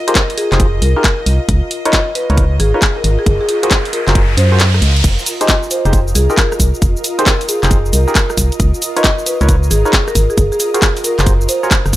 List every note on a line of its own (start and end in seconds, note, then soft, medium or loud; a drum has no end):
0.00 11.96 F4 medium
0.00 1.49 A#4 medium
0.00 1.49 D#5 medium
0.00 5.05 D#5 medium
0.08 0.22 D#4 loud
0.08 0.22 F4 medium
0.08 0.22 G4 medium
0.08 0.22 G#4 medium
0.08 0.23 A#4 medium
0.08 0.22 C5 loud
0.08 cross-stick soft
0.08 closed hi-hat medium
0.15 kick loud
0.15 clap loud
0.15 closed hi-hat medium
0.30 open hi-hat medium
0.38 0.56 G#4 medium
0.38 open hi-hat loud
0.52 0.81 F1 loud
0.52 0.67 D#4 medium
0.52 0.67 F4 medium
0.52 0.67 G4 medium
0.52 0.67 G#4 medium
0.52 0.67 C5 loud
0.52 clap medium
0.52 closed hi-hat soft
0.60 kick loud
0.60 closed hi-hat medium
0.82 0.95 C2 medium
0.82 0.91 A#4 medium
0.82 open hi-hat loud
0.96 1.04 D#4 medium
0.96 1.04 F4 medium
0.96 1.04 G4 medium
0.96 1.04 G#4 medium
0.96 1.01 A#4 medium
0.96 1.04 A#4 loud
1.04 kick loud
1.04 clap loud
1.04 closed hi-hat medium
1.26 1.39 C2 medium
1.26 open hi-hat loud
1.49 1.62 C#2 loud
1.49 kick loud
1.49 closed hi-hat medium
1.49 riser medium
1.71 open hi-hat loud
1.78 11.96 A#4 medium
1.85 2.00 D#4 loud
1.85 2.00 F4 medium
1.85 2.00 A#4 medium
1.85 2.00 B4 medium
1.85 2.00 C#5 loud
1.85 1.90 D#5 medium
1.85 cross-stick soft
1.85 closed hi-hat medium
1.93 kick loud
1.93 clap loud
1.93 closed hi-hat medium
2.15 2.34 B4 medium
2.15 11.96 D#5 medium
2.15 open hi-hat loud
2.30 2.58 C#2 loud
2.30 2.44 D#4 medium
2.30 2.44 F4 medium
2.30 2.44 A#4 medium
2.30 2.44 B4 medium
2.30 2.44 C#5 loud
2.30 closed hi-hat soft
2.37 kick loud
2.37 closed hi-hat medium
2.60 2.73 G#1 medium
2.60 2.71 G#4 medium
2.60 open hi-hat loud
2.74 2.81 D#4 medium
2.74 2.81 F4 medium
2.74 2.81 A#4 medium
2.74 2.81 B4 medium
2.74 2.81 C#5 loud
2.82 kick loud
2.82 clap loud
2.82 closed hi-hat medium
2.97 3.01 A#4 medium
3.04 3.17 G#1 medium
3.04 3.14 A#4 medium
3.04 open hi-hat loud
3.19 3.32 G#4 medium
3.26 3.39 F#1 loud
3.26 kick loud
3.26 closed hi-hat medium
3.41 3.46 G#4 medium
3.48 3.58 G#4 medium
3.48 open hi-hat loud
3.63 3.78 F4 loud
3.63 3.78 F#4 medium
3.63 3.78 G#4 medium
3.63 3.78 A#4 medium
3.63 3.78 C5 loud
3.63 cross-stick soft
3.63 closed hi-hat medium
3.71 kick loud
3.71 clap loud
3.71 closed hi-hat medium
3.85 open hi-hat medium
3.93 4.12 A#4 medium
3.93 open hi-hat loud
4.08 4.36 F#1 loud
4.08 4.22 F4 medium
4.08 4.22 F#4 medium
4.08 4.22 G#4 medium
4.08 4.22 A#4 medium
4.08 4.22 C5 loud
4.08 clap medium
4.08 closed hi-hat soft
4.15 kick loud
4.15 closed hi-hat medium
4.37 4.81 F#2 medium
4.37 4.74 C5 medium
4.37 open hi-hat loud
4.52 4.59 F4 medium
4.52 4.59 F#4 medium
4.52 4.59 G#4 medium
4.52 4.59 A#4 medium
4.52 4.59 C5 loud
4.60 clap loud
4.60 closed hi-hat medium
4.74 cross-stick medium
4.82 5.02 C#2 medium
4.82 open hi-hat loud
4.97 closed hi-hat soft
5.04 5.17 F1 loud
5.04 kick loud
5.04 closed hi-hat medium
5.04 crash loud
5.04 cabasa soft
5.19 cabasa soft
5.26 open hi-hat loud
5.26 cabasa medium
5.41 5.55 D#4 loud
5.41 5.55 F4 medium
5.41 5.55 G4 medium
5.41 5.55 G#4 medium
5.41 5.55 C5 loud
5.41 5.46 D#5 medium
5.41 cross-stick soft
5.41 closed hi-hat medium
5.41 cabasa soft
5.49 5.58 D#5 medium
5.49 kick loud
5.49 clap loud
5.49 closed hi-hat medium
5.49 cabasa soft
5.63 cabasa soft
5.71 5.89 C5 medium
5.71 open hi-hat loud
5.71 cabasa medium
5.85 6.14 F1 loud
5.85 6.00 D#4 medium
5.85 6.00 F4 medium
5.85 6.00 G4 medium
5.85 6.00 G#4 medium
5.85 6.00 C5 loud
5.85 closed hi-hat soft
5.85 cabasa soft
5.93 kick loud
5.93 closed hi-hat medium
5.93 cabasa soft
6.08 cabasa soft
6.15 6.28 C2 medium
6.15 6.27 G#4 medium
6.15 open hi-hat loud
6.15 cabasa medium
6.30 6.37 D#4 medium
6.30 6.37 F4 medium
6.30 6.37 G4 medium
6.30 6.37 G#4 medium
6.30 6.35 A#4 medium
6.30 6.37 A#4 loud
6.30 cabasa soft
6.37 6.47 A#4 medium
6.37 kick loud
6.37 clap loud
6.37 closed hi-hat medium
6.37 cabasa soft
6.52 cross-stick medium
6.52 cabasa soft
6.60 6.73 C2 medium
6.60 kick medium
6.60 open hi-hat loud
6.60 cabasa medium
6.74 cabasa soft
6.82 6.95 F1 loud
6.82 kick loud
6.82 closed hi-hat medium
6.82 cabasa soft
6.97 cabasa soft
7.04 open hi-hat loud
7.04 cabasa medium
7.19 7.33 D#4 loud
7.19 7.33 F4 medium
7.19 7.33 G4 medium
7.19 7.33 G#4 medium
7.19 7.34 A#4 medium
7.19 7.33 C5 loud
7.19 cross-stick soft
7.19 closed hi-hat medium
7.19 cabasa soft
7.26 kick loud
7.26 clap loud
7.26 closed hi-hat medium
7.26 cabasa soft
7.41 open hi-hat medium
7.41 cabasa soft
7.49 7.67 G#4 medium
7.49 open hi-hat loud
7.49 cabasa medium
7.63 7.92 F1 loud
7.63 7.78 D#4 medium
7.63 7.78 F4 medium
7.63 7.78 G4 medium
7.63 7.78 G#4 medium
7.63 7.78 C5 loud
7.63 clap medium
7.63 closed hi-hat soft
7.63 cabasa soft
7.71 kick loud
7.71 closed hi-hat medium
7.71 cabasa soft
7.86 cabasa soft
7.93 8.06 C2 medium
7.93 8.02 A#4 medium
7.93 open hi-hat loud
7.93 cabasa medium
8.08 8.15 D#4 medium
8.08 8.15 F4 medium
8.08 8.15 G4 medium
8.08 8.15 G#4 medium
8.08 8.12 A#4 medium
8.08 8.15 A#4 loud
8.08 cabasa soft
8.15 kick loud
8.15 clap loud
8.15 closed hi-hat medium
8.15 cabasa soft
8.30 cross-stick medium
8.30 cabasa soft
8.37 8.50 C2 medium
8.37 kick medium
8.37 open hi-hat loud
8.37 cabasa medium
8.52 closed hi-hat soft
8.52 cabasa soft
8.60 8.73 C#2 loud
8.60 kick loud
8.60 closed hi-hat medium
8.60 cabasa soft
8.74 cabasa soft
8.82 open hi-hat loud
8.82 cabasa medium
8.96 9.11 D#4 medium
8.96 9.11 F4 medium
8.96 9.11 A#4 medium
8.96 9.11 B4 medium
8.96 9.11 C#5 loud
8.96 9.01 D#5 medium
8.96 cross-stick soft
8.96 closed hi-hat medium
8.96 cabasa soft
9.04 9.13 D#5 medium
9.04 kick loud
9.04 clap loud
9.04 closed hi-hat medium
9.04 cabasa soft
9.19 cabasa soft
9.26 9.45 B4 medium
9.26 open hi-hat loud
9.26 cabasa medium
9.41 9.70 C#2 loud
9.41 9.56 D#4 medium
9.41 9.56 F4 medium
9.41 9.56 A#4 medium
9.41 9.56 B4 medium
9.41 9.56 C#5 medium
9.41 closed hi-hat soft
9.41 cabasa soft
9.49 kick loud
9.49 closed hi-hat medium
9.49 cabasa soft
9.63 cabasa soft
9.71 9.84 G#1 medium
9.71 9.82 G#4 medium
9.71 open hi-hat loud
9.71 cabasa medium
9.85 9.92 D#4 medium
9.85 9.92 F4 medium
9.85 9.92 A#4 medium
9.85 9.92 B4 medium
9.85 9.92 C#5 loud
9.85 cabasa soft
9.93 kick loud
9.93 clap loud
9.93 closed hi-hat medium
9.93 cabasa soft
10.08 10.13 A#4 medium
10.08 cross-stick medium
10.08 cabasa soft
10.15 10.28 G#1 medium
10.15 10.25 A#4 medium
10.15 kick medium
10.15 open hi-hat loud
10.15 cabasa medium
10.30 10.43 G#4 medium
10.30 cabasa soft
10.37 10.51 F#1 loud
10.37 kick loud
10.37 closed hi-hat medium
10.37 cabasa soft
10.52 10.57 G#4 medium
10.52 cabasa soft
10.60 10.69 G#4 medium
10.60 open hi-hat loud
10.60 cabasa medium
10.74 10.89 F4 loud
10.74 10.89 F#4 medium
10.74 10.89 G#4 medium
10.74 10.89 A#4 medium
10.74 10.89 C5 loud
10.74 cross-stick soft
10.74 closed hi-hat medium
10.74 cabasa soft
10.82 kick loud
10.82 clap loud
10.82 closed hi-hat medium
10.82 cabasa soft
10.97 open hi-hat medium
10.97 cabasa soft
11.04 11.23 A#4 medium
11.04 open hi-hat loud
11.04 cabasa medium
11.19 11.47 F#1 loud
11.19 11.33 F4 medium
11.19 11.33 F#4 medium
11.19 11.33 G#4 medium
11.19 11.33 A#4 medium
11.19 11.33 C5 loud
11.19 clap medium
11.19 closed hi-hat soft
11.19 cabasa soft
11.26 kick loud
11.26 closed hi-hat medium
11.26 cabasa soft
11.41 cabasa soft
11.49 11.85 C5 medium
11.49 open hi-hat loud
11.49 cabasa medium
11.63 11.70 F4 medium
11.63 11.70 F#4 medium
11.63 11.70 G#4 medium
11.63 11.70 A#4 medium
11.63 11.70 C#5 loud
11.63 cabasa soft
11.71 kick loud
11.71 clap loud
11.71 closed hi-hat medium
11.71 cabasa soft
11.86 11.92 F#1 medium
11.86 cross-stick medium
11.86 cabasa soft
11.93 11.96 F#1 medium
11.93 kick medium
11.93 open hi-hat loud
11.93 cabasa medium